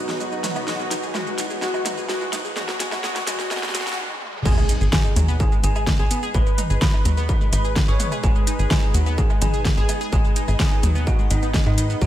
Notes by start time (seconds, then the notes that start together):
Already playing: G#2 B2 F#3 D#4 F#4 B4 D#5, riser
0.09 G#4, snare, shaker
0.20 G#3 F#4, shaker
0.32 D#4, shaker
0.44 F#3, snare, closed hi-hat, mid tom, shaker
0.56 B3, low woodblock, shaker
0.68 G#3 F#4, snare, shaker
0.80 G#3, shaker
0.91 D#4, snare, closed hi-hat, shaker
1.03 G#4, shaker
1.15 G#3 F#4, snare, mid tom, low woodblock, shaker
1.27 G#3, shaker
1.38 D#4, snare, closed hi-hat, shaker
1.50 G#4, shaker
1.62 G#3 F#4, snare, shaker
1.74 G#3, low woodblock, shaker
1.86 D#4, snare, closed hi-hat, mid tom, shaker
1.98 G#4, shaker
2.09 G#3 F#4, snare, shaker
2.21 G#3, shaker
2.33 D#4, snare, closed hi-hat, low woodblock, shaker
2.45 G#4, shaker
2.56 G#3 F#4, snare, mid tom, shaker
2.69 G#3, snare, shaker
2.80 G#3 F#4, snare, closed hi-hat, shaker
2.92 G#3, snare, low woodblock, shaker
3.04 G#3 F#4, snare, shaker
3.16 G#3, snare, closed hi-hat, shaker
3.27 G#3 F#4, snare, closed hi-hat, mid tom, shaker
3.39 G#3, snare, shaker
3.51 G#3 F#4, snare, low woodblock, shaker
3.57 snare
3.63 G#3, snare, shaker
3.69 snare
3.75 G#3 F#4, snare, closed hi-hat, shaker
3.81 snare
3.87 G#3, snare, shaker
3.92 snare
3.98 high tom
4.10 high tom
4.22 mid tom
4.34 mid tom
4.45 G#1 G#3 D#4 G#4 B4 G#5, kick, mid tom, crash, impact, shaker
4.58 G#3, low woodblock, shaker
4.69 D#4 D#5, closed hi-hat, shaker
4.81 G#1 G#4, shaker
4.93 G#3 G#4 G#5, kick, snare, shaker
5.05 D#4, shaker
5.16 D#2 F#3, closed hi-hat, mid tom, low woodblock, shaker
5.28 B3, shaker
5.40 D#3 G#4 G#5, kick, shaker
5.52 G#3, shaker
5.64 G#1 D#4 G#4 G#5, closed hi-hat, shaker
5.76 G#4, low woodblock, shaker
5.87 G#3, kick, snare, mid tom, shaker
5.99 G#1 G#4 G#5, shaker
6.11 B3, closed hi-hat, shaker
6.23 G#4, shaker
6.34 G#1 G#3 B4 B5, kick, low woodblock, shaker
6.46 G#3, shaker
6.58 D#4, closed hi-hat, mid tom, shaker
6.70 G#1 G#4, shaker
6.82 G#3 B4 B5, kick, snare, shaker
6.94 D#4, low woodblock, shaker
7.05 D#2 F#3, closed hi-hat, shaker
7.17 B3, shaker
7.29 D#3 B4 B5, kick, mid tom, shaker
7.41 G#3, shaker
7.53 G#1 D#4 B4 B5, closed hi-hat, low woodblock, shaker
7.65 G#4, shaker
7.76 G#3, kick, snare, shaker
7.88 G#1 G#4 C#5 C#6, shaker
8.00 B3, closed hi-hat, mid tom, shaker
8.12 G#4, low woodblock, shaker
8.23 G#1 G#3 G#4 G#5, kick, shaker
8.36 G#3, shaker
8.47 D#4, closed hi-hat, shaker
8.59 G#1 G#4, shaker
8.71 G#3 G#4 G#5, kick, snare, mid tom, low woodblock, shaker
8.83 D#4, shaker
8.94 D#2 F#3, closed hi-hat, shaker
9.06 B3, shaker
9.18 D#3 G#4 G#5, kick, shaker
9.30 G#3, low woodblock, shaker
9.42 G#1 D#4 G#4 G#5, closed hi-hat, mid tom, shaker
9.54 G#4, shaker
9.65 G#3, kick, snare, shaker
9.77 G#1 G#4 G#5, shaker
9.89 B3, closed hi-hat, low woodblock, shaker
10.01 G#4, shaker
10.12 G#1 G#3 G#4 G#5, kick, mid tom, shaker
10.25 G#3, shaker
10.36 D#4, closed hi-hat, shaker
10.48 G#1 G#4, low woodblock, shaker
10.60 G#3 G#4 G#5, kick, snare, shaker
10.72 D#4, shaker
10.83 D#2 F#3, closed hi-hat, mid tom, shaker
10.95 B3, shaker
11.07 D#3 F#4 F#5, kick, low woodblock, shaker
11.19 G#3, shaker
11.31 G#1 G#3 D#4 D#5, closed hi-hat, shaker
11.43 B3, shaker
11.54 G#3, kick, snare, mid tom, shaker
11.66 G#2 G#3 D#4 D#5, low woodblock, shaker
11.78 D#3, closed hi-hat, shaker
11.90 B3, shaker
12.02 B1 G#3 B3 F#4 F#5, kick, mid tom, shaker